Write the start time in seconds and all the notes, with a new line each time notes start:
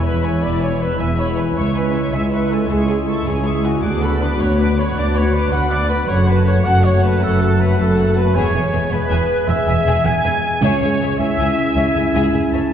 Already playing: E1 E2 G#3 B3 E4 E5
0.04 E4 B4 E5 B5
0.23 B3 B4 C#5 G#5
0.42 E1 E2 E4 D5 E5 B5
0.62 B3 B4 C#5 G#5
0.81 E4 B4 E5 B5
0.99 E1 E2 G#3 B3 E4 B4 E5 G#5
1.18 E4 C#5 E5 B5
1.38 B3 B4 G#5
1.56 C#2 G#3 E4 C#5 E5 C#6
1.75 C#4 B4 C#5 G#5
1.94 E4 C#5 E5 C#6
2.12 C#2 G#3 C#4 E4 C#5 E5 G#5
2.31 E4 B4 E5 C#6
2.50 C#4 A4 C#5 G#5
2.69 C#2 G#3 E4 G#4 E5 C#6
2.89 C#4 G#4 C#5 G#5
3.08 E4 A4 E5 C#6
3.27 C#2 G#3 C#4 E4 G#4 C#5 G#5
3.46 E4 E5 C#6
3.64 C#4 F#4 C#5 G#5
3.82 D2 B3 D4 F#4 G#4 D5 F#5 D6
4.01 F#4 A4 B4 B5
4.21 D4 B4 D5 D6
4.39 D2 F#4 B4 C#5 B5
4.58 D4 B4 D5 D6
4.78 F#4 B4 C#5 B5
4.96 D2 B3 D4 F#4 D5 D6
5.15 F#4 B4 C#5 B5
5.34 D4 B4 D5 D6
5.52 D2 B3 F#4 B4 F#5 B5
5.70 D4 D5 D6
5.89 F#4 B4 B5
6.08 F#1 F#2 A3 F#4 A4 C#5 F#5
6.27 F#4 A4 B4 A5
6.46 A4 C#5 F#5
6.65 F#1 F#2 A3 F#4 A4 F#5 A5
6.84 A4 C#5 F#5
7.03 F#4 A4 B4 A5
7.22 F#1 F#2 A3 F#4 A4 C#5 F#5
7.41 F#4 A4 A5
7.60 A4 B4 C#5 F#5
7.78 F#1 F#2 A3 F#4 A4 A5
7.97 A4 C#5 F#5
8.16 F#4 A4 B4 A5
8.34 E1 E2 G#3 B3 G#4 C#5 E5 G#5
8.54 E1 E2 G#4 E5 G#5
8.72 E1 E2 G#4 B4 E5
8.91 E1 E2 G#3 B3 G#4 B4 E5 G#5
9.10 E1 E2 G#4 E5 G#5
9.47 E1 E2 G#3 B3 G#4 B4 E5 G#5
9.67 E1 E2 G#4 E5 G#5
9.85 E1 E2 G#4 E5 G#5
10.04 E1 E2 G#3 B3 G#4 E5 G#5
10.24 E1 E2 G#4 B4 E5
10.61 C#2 C#3 G#3 C#4 G#4 C#5 E5 G#5
10.81 C#2 G#4 E5 G#5
11.00 C#2 G#4 C#5 E5
11.19 C#2 G#3 C#4 E4 G#4 E5 G#5
11.38 C#2 G#4 E5 G#5
11.75 C#2 G#4 C#5 E5
11.95 C#2 G#4 E5 G#5
12.15 C#2 G#4 E5 G#5
12.34 C#2 G#4 E5 G#5
12.52 C#2 G#4 C#5 E5 A5